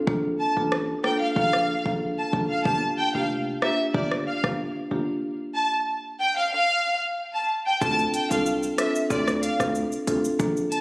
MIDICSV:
0, 0, Header, 1, 5, 480
1, 0, Start_track
1, 0, Key_signature, -1, "minor"
1, 0, Tempo, 645161
1, 54, Time_signature, 4, 2, 24, 8
1, 8042, End_track
2, 0, Start_track
2, 0, Title_t, "Violin section"
2, 0, Program_c, 0, 48
2, 295, Note_on_c, 0, 81, 79
2, 382, Note_off_c, 0, 81, 0
2, 775, Note_on_c, 0, 79, 74
2, 862, Note_off_c, 0, 79, 0
2, 901, Note_on_c, 0, 77, 77
2, 979, Note_off_c, 0, 77, 0
2, 1014, Note_on_c, 0, 77, 105
2, 1360, Note_off_c, 0, 77, 0
2, 1622, Note_on_c, 0, 81, 72
2, 1700, Note_off_c, 0, 81, 0
2, 1862, Note_on_c, 0, 77, 77
2, 1940, Note_off_c, 0, 77, 0
2, 1975, Note_on_c, 0, 81, 112
2, 2062, Note_off_c, 0, 81, 0
2, 2215, Note_on_c, 0, 79, 86
2, 2302, Note_off_c, 0, 79, 0
2, 2341, Note_on_c, 0, 77, 74
2, 2419, Note_off_c, 0, 77, 0
2, 2695, Note_on_c, 0, 76, 75
2, 2782, Note_off_c, 0, 76, 0
2, 2936, Note_on_c, 0, 74, 74
2, 3023, Note_off_c, 0, 74, 0
2, 3176, Note_on_c, 0, 77, 68
2, 3263, Note_off_c, 0, 77, 0
2, 4135, Note_on_c, 0, 81, 81
2, 4222, Note_off_c, 0, 81, 0
2, 4614, Note_on_c, 0, 79, 78
2, 4702, Note_off_c, 0, 79, 0
2, 4741, Note_on_c, 0, 77, 76
2, 4819, Note_off_c, 0, 77, 0
2, 4853, Note_on_c, 0, 77, 102
2, 5199, Note_off_c, 0, 77, 0
2, 5462, Note_on_c, 0, 81, 73
2, 5539, Note_off_c, 0, 81, 0
2, 5700, Note_on_c, 0, 79, 76
2, 5778, Note_off_c, 0, 79, 0
2, 5813, Note_on_c, 0, 81, 113
2, 5901, Note_off_c, 0, 81, 0
2, 6054, Note_on_c, 0, 79, 80
2, 6141, Note_off_c, 0, 79, 0
2, 6181, Note_on_c, 0, 77, 74
2, 6259, Note_off_c, 0, 77, 0
2, 6535, Note_on_c, 0, 76, 72
2, 6622, Note_off_c, 0, 76, 0
2, 6775, Note_on_c, 0, 74, 73
2, 6862, Note_off_c, 0, 74, 0
2, 7016, Note_on_c, 0, 77, 69
2, 7103, Note_off_c, 0, 77, 0
2, 7975, Note_on_c, 0, 81, 80
2, 8042, Note_off_c, 0, 81, 0
2, 8042, End_track
3, 0, Start_track
3, 0, Title_t, "Marimba"
3, 0, Program_c, 1, 12
3, 52, Note_on_c, 1, 58, 93
3, 54, Note_on_c, 1, 62, 84
3, 55, Note_on_c, 1, 65, 81
3, 57, Note_on_c, 1, 69, 106
3, 390, Note_off_c, 1, 58, 0
3, 391, Note_off_c, 1, 62, 0
3, 391, Note_off_c, 1, 65, 0
3, 392, Note_off_c, 1, 69, 0
3, 420, Note_on_c, 1, 58, 76
3, 421, Note_on_c, 1, 62, 69
3, 422, Note_on_c, 1, 65, 67
3, 424, Note_on_c, 1, 69, 84
3, 747, Note_off_c, 1, 58, 0
3, 747, Note_off_c, 1, 62, 0
3, 748, Note_off_c, 1, 65, 0
3, 749, Note_off_c, 1, 69, 0
3, 773, Note_on_c, 1, 58, 73
3, 774, Note_on_c, 1, 62, 72
3, 776, Note_on_c, 1, 65, 68
3, 777, Note_on_c, 1, 69, 82
3, 996, Note_off_c, 1, 58, 0
3, 996, Note_off_c, 1, 62, 0
3, 997, Note_off_c, 1, 65, 0
3, 998, Note_off_c, 1, 69, 0
3, 1012, Note_on_c, 1, 58, 94
3, 1014, Note_on_c, 1, 62, 86
3, 1015, Note_on_c, 1, 65, 87
3, 1017, Note_on_c, 1, 69, 101
3, 1350, Note_off_c, 1, 58, 0
3, 1351, Note_off_c, 1, 62, 0
3, 1352, Note_off_c, 1, 65, 0
3, 1352, Note_off_c, 1, 69, 0
3, 1380, Note_on_c, 1, 58, 72
3, 1382, Note_on_c, 1, 62, 65
3, 1383, Note_on_c, 1, 65, 68
3, 1384, Note_on_c, 1, 69, 81
3, 1707, Note_off_c, 1, 58, 0
3, 1707, Note_off_c, 1, 62, 0
3, 1708, Note_off_c, 1, 65, 0
3, 1709, Note_off_c, 1, 69, 0
3, 1732, Note_on_c, 1, 58, 73
3, 1734, Note_on_c, 1, 62, 70
3, 1735, Note_on_c, 1, 65, 68
3, 1737, Note_on_c, 1, 69, 83
3, 1955, Note_off_c, 1, 58, 0
3, 1956, Note_off_c, 1, 62, 0
3, 1957, Note_off_c, 1, 65, 0
3, 1958, Note_off_c, 1, 69, 0
3, 1972, Note_on_c, 1, 58, 89
3, 1973, Note_on_c, 1, 62, 85
3, 1975, Note_on_c, 1, 65, 85
3, 1977, Note_on_c, 1, 67, 103
3, 2310, Note_off_c, 1, 58, 0
3, 2311, Note_off_c, 1, 62, 0
3, 2311, Note_off_c, 1, 65, 0
3, 2312, Note_off_c, 1, 67, 0
3, 2340, Note_on_c, 1, 58, 76
3, 2341, Note_on_c, 1, 62, 70
3, 2343, Note_on_c, 1, 65, 69
3, 2344, Note_on_c, 1, 67, 88
3, 2666, Note_off_c, 1, 58, 0
3, 2667, Note_off_c, 1, 62, 0
3, 2668, Note_off_c, 1, 65, 0
3, 2669, Note_off_c, 1, 67, 0
3, 2693, Note_on_c, 1, 58, 74
3, 2694, Note_on_c, 1, 62, 68
3, 2695, Note_on_c, 1, 65, 70
3, 2697, Note_on_c, 1, 67, 83
3, 2916, Note_off_c, 1, 58, 0
3, 2916, Note_off_c, 1, 62, 0
3, 2917, Note_off_c, 1, 65, 0
3, 2918, Note_off_c, 1, 67, 0
3, 2933, Note_on_c, 1, 58, 89
3, 2934, Note_on_c, 1, 62, 85
3, 2936, Note_on_c, 1, 65, 89
3, 2937, Note_on_c, 1, 67, 101
3, 3270, Note_off_c, 1, 58, 0
3, 3271, Note_off_c, 1, 62, 0
3, 3272, Note_off_c, 1, 65, 0
3, 3272, Note_off_c, 1, 67, 0
3, 3300, Note_on_c, 1, 58, 72
3, 3301, Note_on_c, 1, 62, 66
3, 3303, Note_on_c, 1, 65, 67
3, 3305, Note_on_c, 1, 67, 81
3, 3627, Note_off_c, 1, 58, 0
3, 3627, Note_off_c, 1, 62, 0
3, 3628, Note_off_c, 1, 65, 0
3, 3629, Note_off_c, 1, 67, 0
3, 3653, Note_on_c, 1, 58, 78
3, 3654, Note_on_c, 1, 62, 68
3, 3656, Note_on_c, 1, 65, 70
3, 3657, Note_on_c, 1, 67, 80
3, 3876, Note_off_c, 1, 58, 0
3, 3876, Note_off_c, 1, 62, 0
3, 3877, Note_off_c, 1, 65, 0
3, 3878, Note_off_c, 1, 67, 0
3, 5813, Note_on_c, 1, 60, 90
3, 5815, Note_on_c, 1, 62, 83
3, 5816, Note_on_c, 1, 65, 85
3, 5817, Note_on_c, 1, 69, 96
3, 6151, Note_off_c, 1, 60, 0
3, 6151, Note_off_c, 1, 62, 0
3, 6152, Note_off_c, 1, 65, 0
3, 6153, Note_off_c, 1, 69, 0
3, 6180, Note_on_c, 1, 60, 72
3, 6182, Note_on_c, 1, 62, 70
3, 6183, Note_on_c, 1, 65, 68
3, 6184, Note_on_c, 1, 69, 80
3, 6507, Note_off_c, 1, 60, 0
3, 6507, Note_off_c, 1, 62, 0
3, 6508, Note_off_c, 1, 65, 0
3, 6509, Note_off_c, 1, 69, 0
3, 6532, Note_on_c, 1, 60, 74
3, 6534, Note_on_c, 1, 62, 68
3, 6535, Note_on_c, 1, 65, 68
3, 6537, Note_on_c, 1, 69, 84
3, 6755, Note_off_c, 1, 60, 0
3, 6756, Note_off_c, 1, 62, 0
3, 6757, Note_off_c, 1, 65, 0
3, 6758, Note_off_c, 1, 69, 0
3, 6772, Note_on_c, 1, 60, 93
3, 6774, Note_on_c, 1, 62, 86
3, 6775, Note_on_c, 1, 65, 82
3, 6777, Note_on_c, 1, 69, 101
3, 7110, Note_off_c, 1, 60, 0
3, 7111, Note_off_c, 1, 62, 0
3, 7111, Note_off_c, 1, 65, 0
3, 7112, Note_off_c, 1, 69, 0
3, 7139, Note_on_c, 1, 60, 72
3, 7141, Note_on_c, 1, 62, 65
3, 7142, Note_on_c, 1, 65, 66
3, 7144, Note_on_c, 1, 69, 76
3, 7466, Note_off_c, 1, 60, 0
3, 7467, Note_off_c, 1, 62, 0
3, 7468, Note_off_c, 1, 65, 0
3, 7468, Note_off_c, 1, 69, 0
3, 7492, Note_on_c, 1, 60, 77
3, 7493, Note_on_c, 1, 62, 68
3, 7495, Note_on_c, 1, 65, 68
3, 7496, Note_on_c, 1, 69, 82
3, 7715, Note_off_c, 1, 60, 0
3, 7716, Note_off_c, 1, 62, 0
3, 7717, Note_off_c, 1, 65, 0
3, 7717, Note_off_c, 1, 69, 0
3, 7731, Note_on_c, 1, 58, 93
3, 7733, Note_on_c, 1, 62, 83
3, 7734, Note_on_c, 1, 65, 84
3, 7736, Note_on_c, 1, 69, 101
3, 8042, Note_off_c, 1, 58, 0
3, 8042, Note_off_c, 1, 62, 0
3, 8042, Note_off_c, 1, 65, 0
3, 8042, Note_off_c, 1, 69, 0
3, 8042, End_track
4, 0, Start_track
4, 0, Title_t, "808-style bass"
4, 0, Program_c, 2, 38
4, 55, Note_on_c, 2, 34, 111
4, 244, Note_off_c, 2, 34, 0
4, 422, Note_on_c, 2, 33, 97
4, 700, Note_off_c, 2, 33, 0
4, 1014, Note_on_c, 2, 34, 99
4, 1303, Note_off_c, 2, 34, 0
4, 1381, Note_on_c, 2, 34, 89
4, 1570, Note_off_c, 2, 34, 0
4, 1734, Note_on_c, 2, 34, 100
4, 1835, Note_off_c, 2, 34, 0
4, 1975, Note_on_c, 2, 31, 109
4, 2164, Note_off_c, 2, 31, 0
4, 2342, Note_on_c, 2, 29, 88
4, 2620, Note_off_c, 2, 29, 0
4, 2934, Note_on_c, 2, 31, 103
4, 3223, Note_off_c, 2, 31, 0
4, 3301, Note_on_c, 2, 31, 94
4, 3490, Note_off_c, 2, 31, 0
4, 3654, Note_on_c, 2, 31, 100
4, 3755, Note_off_c, 2, 31, 0
4, 5814, Note_on_c, 2, 38, 103
4, 6003, Note_off_c, 2, 38, 0
4, 6181, Note_on_c, 2, 36, 92
4, 6459, Note_off_c, 2, 36, 0
4, 6774, Note_on_c, 2, 38, 99
4, 7063, Note_off_c, 2, 38, 0
4, 7141, Note_on_c, 2, 38, 94
4, 7330, Note_off_c, 2, 38, 0
4, 7495, Note_on_c, 2, 38, 102
4, 7595, Note_off_c, 2, 38, 0
4, 7734, Note_on_c, 2, 34, 106
4, 7923, Note_off_c, 2, 34, 0
4, 8042, End_track
5, 0, Start_track
5, 0, Title_t, "Drums"
5, 55, Note_on_c, 9, 36, 119
5, 129, Note_off_c, 9, 36, 0
5, 535, Note_on_c, 9, 37, 96
5, 609, Note_off_c, 9, 37, 0
5, 774, Note_on_c, 9, 37, 87
5, 849, Note_off_c, 9, 37, 0
5, 1014, Note_on_c, 9, 36, 90
5, 1088, Note_off_c, 9, 36, 0
5, 1141, Note_on_c, 9, 37, 89
5, 1215, Note_off_c, 9, 37, 0
5, 1381, Note_on_c, 9, 36, 81
5, 1455, Note_off_c, 9, 36, 0
5, 1734, Note_on_c, 9, 36, 97
5, 1809, Note_off_c, 9, 36, 0
5, 1975, Note_on_c, 9, 36, 123
5, 2049, Note_off_c, 9, 36, 0
5, 2695, Note_on_c, 9, 37, 86
5, 2769, Note_off_c, 9, 37, 0
5, 2934, Note_on_c, 9, 36, 93
5, 3009, Note_off_c, 9, 36, 0
5, 3061, Note_on_c, 9, 37, 89
5, 3136, Note_off_c, 9, 37, 0
5, 3301, Note_on_c, 9, 36, 83
5, 3303, Note_on_c, 9, 37, 91
5, 3376, Note_off_c, 9, 36, 0
5, 3377, Note_off_c, 9, 37, 0
5, 5814, Note_on_c, 9, 82, 76
5, 5815, Note_on_c, 9, 36, 121
5, 5889, Note_off_c, 9, 36, 0
5, 5889, Note_off_c, 9, 82, 0
5, 5942, Note_on_c, 9, 82, 58
5, 6017, Note_off_c, 9, 82, 0
5, 6054, Note_on_c, 9, 42, 76
5, 6054, Note_on_c, 9, 82, 54
5, 6129, Note_off_c, 9, 42, 0
5, 6129, Note_off_c, 9, 82, 0
5, 6182, Note_on_c, 9, 82, 82
5, 6257, Note_off_c, 9, 82, 0
5, 6294, Note_on_c, 9, 82, 73
5, 6369, Note_off_c, 9, 82, 0
5, 6420, Note_on_c, 9, 82, 55
5, 6494, Note_off_c, 9, 82, 0
5, 6535, Note_on_c, 9, 37, 86
5, 6535, Note_on_c, 9, 42, 70
5, 6535, Note_on_c, 9, 82, 50
5, 6609, Note_off_c, 9, 37, 0
5, 6609, Note_off_c, 9, 42, 0
5, 6609, Note_off_c, 9, 82, 0
5, 6662, Note_on_c, 9, 82, 80
5, 6737, Note_off_c, 9, 82, 0
5, 6773, Note_on_c, 9, 82, 70
5, 6774, Note_on_c, 9, 36, 94
5, 6848, Note_off_c, 9, 36, 0
5, 6848, Note_off_c, 9, 82, 0
5, 6901, Note_on_c, 9, 37, 89
5, 6902, Note_on_c, 9, 82, 51
5, 6976, Note_off_c, 9, 37, 0
5, 6976, Note_off_c, 9, 82, 0
5, 7015, Note_on_c, 9, 42, 87
5, 7015, Note_on_c, 9, 82, 62
5, 7090, Note_off_c, 9, 42, 0
5, 7090, Note_off_c, 9, 82, 0
5, 7141, Note_on_c, 9, 36, 87
5, 7143, Note_on_c, 9, 37, 91
5, 7144, Note_on_c, 9, 82, 80
5, 7215, Note_off_c, 9, 36, 0
5, 7217, Note_off_c, 9, 37, 0
5, 7219, Note_off_c, 9, 82, 0
5, 7255, Note_on_c, 9, 82, 66
5, 7329, Note_off_c, 9, 82, 0
5, 7382, Note_on_c, 9, 82, 61
5, 7456, Note_off_c, 9, 82, 0
5, 7495, Note_on_c, 9, 42, 74
5, 7495, Note_on_c, 9, 82, 50
5, 7569, Note_off_c, 9, 42, 0
5, 7569, Note_off_c, 9, 82, 0
5, 7623, Note_on_c, 9, 82, 79
5, 7697, Note_off_c, 9, 82, 0
5, 7734, Note_on_c, 9, 82, 73
5, 7735, Note_on_c, 9, 36, 114
5, 7809, Note_off_c, 9, 36, 0
5, 7809, Note_off_c, 9, 82, 0
5, 7863, Note_on_c, 9, 82, 58
5, 7937, Note_off_c, 9, 82, 0
5, 7975, Note_on_c, 9, 42, 75
5, 7975, Note_on_c, 9, 82, 55
5, 8042, Note_off_c, 9, 42, 0
5, 8042, Note_off_c, 9, 82, 0
5, 8042, End_track
0, 0, End_of_file